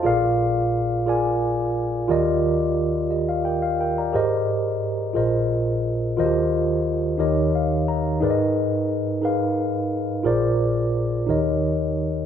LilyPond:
<<
  \new Staff \with { instrumentName = "Tine electric piano" } { \time 6/8 \key ees \major \tempo 4. = 59 << { a'16 r2 r8. | r4. <g' ees''>16 f''16 <bes' g''>16 f''16 <bes' g''>16 <d'' bes''>16~ | <d'' bes''>16 r2 r8. | r2 f''8 bes''8 |
r2. | r2. | } \\ { <f' aes' bes' d'' f''>4 r8 <f' aes' bes' d'' aes''>4 r8 | <f' g' bes' d'' ees''>4 r2 | <g' aes' bes' c'' ees''>4 r8 <f' aes' bes' c'' ees''>4 r8 | <f' ges' g' bes' c'' ees''>4 r8 <ees' g' bes' des'' ees''>4 r8 |
<ees' aes' bes' ces'' d'' ees''>4 r8 <ees' aes' bes' ces'' f''>4 r8 | <f' aes' bes' c'' d''>4 r8 <ees' g' bes' des'' ees''>4 r8 | } >> }
  \new Staff \with { instrumentName = "Tine electric piano" } { \clef bass \time 6/8 \key ees \major <bes,, bes,>2. | <ees, ees>2. | aes,4. <bes,, bes,>4. | <ees, ees>4. <ees, ees>4. |
aes,2. | <bes,, bes,>4. <ees, ees>4. | }
>>